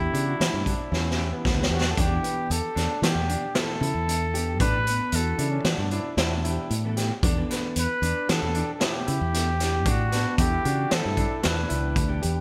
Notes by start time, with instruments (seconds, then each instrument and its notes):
Already playing: hollow-body jazz guitar E3 B3 D4 G4, trumpet E4, flugelhorn G4
0.13 fingered electric bass C#3, grand piano D4, closed hi-hat
0.27 flugelhorn F#4
0.39 fingered electric bass E3, flugelhorn E4, snare, closed hi-hat
0.54 fingered electric bass G2
0.65 flugelhorn D4, grand piano D4, kick, closed hi-hat
0.92 fingered electric bass E2, flugelhorn C#4, grand piano E4, snare
1.11 snare
1.16 hollow-body jazz guitar E3 B3 D4 G4, grand piano E4
1.32 flugelhorn B3
1.45 fingered electric bass D2, kick, snare
1.57 hollow-body jazz guitar E3 B3 D4 G4
1.63 snare
1.70 fingered electric bass E2, trumpet F#4, grand piano G4
1.81 snare
1.91 trumpet A4
1.97 fingered electric bass E2, hollow-body jazz guitar E3 B3 D4 G4, grand piano D4, trumpet G4, kick, closed hi-hat
2.11 hollow-body jazz guitar E3 B3 D4 E4
2.23 grand piano B3, closed hi-hat
2.50 fingered electric bass E2, trumpet A4, closed hi-hat
2.75 fingered electric bass E2, grand piano D4, snare, closed hi-hat
3.02 fingered electric bass E3, hollow-body jazz guitar E3 B3 D4 G4, trumpet G4, snare, closed hi-hat
3.15 fingered electric bass E2
3.28 hollow-body jazz guitar E3 B3 D4 G4, grand piano D4, closed hi-hat
3.55 hollow-body jazz guitar E3 B3 D4 E4, grand piano E4, trumpet A4, snare, closed hi-hat
3.81 fingered electric bass C#3, grand piano E4, closed hi-hat
3.95 fingered electric bass E2
4.07 hollow-body jazz guitar E3 B3 D4 E4, closed hi-hat
4.33 hollow-body jazz guitar E3 B3 D4 G4, grand piano G4, closed hi-hat
4.60 fingered electric bass A2, grand piano D4, trumpet B4, kick, closed hi-hat
4.86 grand piano B3, closed hi-hat
5.12 fingered electric bass E2, hollow-body jazz guitar E3 B3 D4 F#4, trumpet A4, closed hi-hat
5.38 fingered electric bass C#3, grand piano D4, flugelhorn E4, closed hi-hat
5.50 flugelhorn C#4
5.64 fingered electric bass E3, flugelhorn D4, snare, closed hi-hat
5.78 fingered electric bass G2
5.91 grand piano D4, flugelhorn E4, closed hi-hat
6.16 fingered electric bass E2, flugelhorn D4, grand piano E4, snare, closed hi-hat
6.44 hollow-body jazz guitar E3 B3 D4 G4, grand piano E4, closed hi-hat
6.70 fingered electric bass A2, closed hi-hat
6.84 hollow-body jazz guitar E3 B3 D4 A4
6.97 grand piano G4, snare, closed hi-hat
7.23 fingered electric bass E2, hollow-body jazz guitar E3 B3 D4 A4, grand piano D4, kick, closed hi-hat
7.37 hollow-body jazz guitar E3 B3 D4 A4
7.50 grand piano B3, snare, closed hi-hat
7.76 fingered electric bass E2, trumpet B4, closed hi-hat
8.02 fingered electric bass E2, grand piano D4, closed hi-hat
8.29 hollow-body jazz guitar E3 B3 D4 G4, fingered electric bass E3, trumpet A4, snare, closed hi-hat
8.42 fingered electric bass E2
8.55 hollow-body jazz guitar E3 B3 D4 G4, grand piano D4, closed hi-hat
8.74 trumpet A4
8.80 hollow-body jazz guitar E3 B3 D4 G4, grand piano E4, snare, closed hi-hat
8.84 trumpet G4
9.07 fingered electric bass C#3, grand piano E4, closed hi-hat
9.21 fingered electric bass E2
9.33 hollow-body jazz guitar E3 B3 D4 A4, snare, closed hi-hat
9.60 hollow-body jazz guitar E3 B3 D4 G4, grand piano G4, snare, closed hi-hat
9.86 fingered electric bass A2, grand piano D4, trumpet F#4, kick, closed hi-hat
10.12 grand piano B3, flugelhorn D4, snare, closed hi-hat
10.38 fingered electric bass E2, hollow-body jazz guitar E3 B3 D4 A4, flugelhorn E4, trumpet G4, kick, closed hi-hat
10.64 fingered electric bass C#3, grand piano D4, flugelhorn F#4, closed hi-hat
10.90 fingered electric bass E3, flugelhorn E4, trumpet A4, snare, closed hi-hat
11.05 fingered electric bass G2
11.17 grand piano D4, kick, closed hi-hat
11.43 fingered electric bass E2, flugelhorn D4, grand piano E4, trumpet B4, snare, closed hi-hat
11.69 fingered electric bass C#2, hollow-body jazz guitar E3 B3 D4 G4, grand piano E4, closed hi-hat
11.96 fingered electric bass D2, kick, closed hi-hat
12.08 hollow-body jazz guitar E3 B3 D4 G4
12.22 fingered electric bass E2, grand piano G4, closed hi-hat